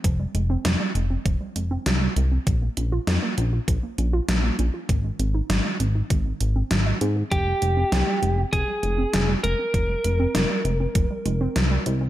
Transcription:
<<
  \new Staff \with { instrumentName = "Lead electric guitar" } { \time 4/4 \key f \minor \tempo 4 = 99 r1 | r1 | r1 | g'2 aes'4. bes'8~ |
bes'1 | }
  \new Staff \with { instrumentName = "Synth arpeggio sound" } { \clef bass \time 4/4 \key f \minor f16 g16 aes16 c'16 f16 g16 aes16 c'16 f16 g16 aes16 c'16 f16 g16 aes16 c'16 | f16 bes16 des'16 f'16 f16 bes16 des'16 f'16 f16 bes16 des'16 f'16 f16 bes16 des'16 f'16 | ees16 aes16 c'16 ees'16 ees16 aes16 c'16 ees'16 ees16 aes16 c'16 c'16 ees16 ees''16 c'16 aes'16 | f16 g16 aes16 c'16 f16 g16 aes16 c'16 f16 g16 aes16 c'16 f16 g16 aes16 c'16 |
f16 g16 aes16 c'16 f16 g16 aes16 c'16 f16 g16 aes16 c'16 f16 g16 aes16 c'16 | }
  \new Staff \with { instrumentName = "Analog synth bass" } { \clef bass \time 4/4 \key f \minor f,,8 f,,8 f,,8 f,,8 f,,8 f,,8 c,8 c,8 | bes,,8 bes,,8 f,8 bes,,8 bes,,8 bes,,8 bes,,8 bes,,8 | aes,,8 aes,,8 aes,,8 aes,,8 aes,,8 aes,,8 aes,,8 aes,8 | f,,8 f,,8 c,8 f,,8 f,,8 f,,8 f,,8 f,,8 |
f,,8 f,,8 f,,8 f,,8 f,,8 f,,8 c,8 c,8 | }
  \new DrumStaff \with { instrumentName = "Drums" } \drummode { \time 4/4 <hh bd>8 hh8 <hh sn>8 hh8 <hh bd>8 hh8 <hh sn>8 hh8 | <hh bd>8 hh8 <hh sn>8 hh8 <hh bd>8 hh8 <hh sn>8 hh8 | <hh bd>8 hh8 <hh sn>8 hh8 <hh bd>8 hh8 <hh sn>8 hh8 | <hh bd>8 hh8 <hh sn>8 hh8 <hh bd>8 hh8 <hh sn>8 hh8 |
<hh bd>8 hh8 <hh sn>8 hh8 <hh bd>8 hh8 <hh sn>8 hh8 | }
>>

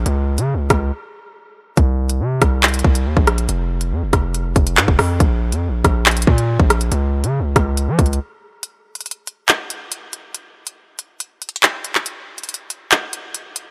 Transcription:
<<
  \new Staff \with { instrumentName = "808-style bass" } { \clef bass \time 4/4 \key bes \dorian \tempo 4 = 140 des,8. des16. des,16. des,8 r2 | c,4 c8 c,4 c,8 ees,16 bes,,8. | f,,4 f,16 f,,16 f,,4 f,,8 aes,16 f,,16 f,8 | bes,,8. f,16. bes,,16. bes,,4 bes,8. bes,,8. |
des,8. des16. des,16. des,8. f16 des,8 r4 | r1 | r1 | r1 | }
  \new DrumStaff \with { instrumentName = "Drums" } \drummode { \time 4/4 hh8. hh16 r8 <hh bd ss>8 r4 r4 | <hh bd>8. hh16 r8 <hh bd ss>8 <hc hh>32 hh32 hh32 hh32 bd16 hh16 r16 bd16 <hh ss>16 hh16 | hh8. hh16 r8 <hh bd ss>8 hh8 <hh bd>16 hh16 hc16 bd16 <hho ss>8 | <hh bd>8. hh16 r8 <hh bd ss>8 <hc hh>32 hh32 hh32 hh32 bd16 hh16 r16 bd16 <hh ss>16 hh16 |
hh8. hh16 r8 <hh bd ss>8 \tuplet 3/2 { hh16 r16 r16 <hh bd>16 hh16 hh16 } r4 | hh8. hh32 hh32 hh32 hh16. hh8 <hc hh>8 hh8 hh8 hh8 | hh8. hh16 r8 hh8 \tuplet 3/2 { hh16 r16 r16 hh16 hh16 hh16 } hc8 hh16 hc16 | hh8. hh32 hh32 hh32 hh16. hh8 <hc hh>8 hh8 hh8 hh8 | }
>>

